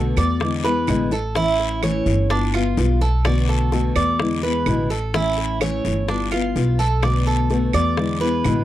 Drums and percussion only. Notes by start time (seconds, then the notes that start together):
0.17 high bongo, short guiro, claves
0.40 high bongo, long guiro
0.64 high bongo
0.87 low bongo, short guiro, claves
1.11 low bongo, short guiro
1.35 high bongo, long guiro
1.59 high bongo
1.83 high bongo, short guiro, claves
2.06 high bongo, short guiro
2.30 high bongo, long guiro
2.54 high bongo, claves
2.77 high bongo, low bongo, short guiro
3.01 short guiro
3.25 high bongo, long guiro, claves
3.49 high bongo
3.72 high bongo, short guiro
3.96 high bongo, short guiro, claves
4.19 high bongo, long guiro
4.43 high bongo
4.66 high bongo, low bongo, short guiro, claves
4.90 short guiro
5.14 high bongo, long guiro
5.38 high bongo
5.61 high bongo, short guiro, claves
5.85 high bongo, short guiro
6.09 high bongo, long guiro
6.32 high bongo, claves
6.56 high bongo, low bongo, short guiro
6.79 short guiro
7.03 high bongo, long guiro, claves
7.27 high bongo
7.50 high bongo, short guiro
7.73 high bongo, short guiro, claves
7.97 high bongo, long guiro
8.21 high bongo
8.44 high bongo, low bongo, short guiro, claves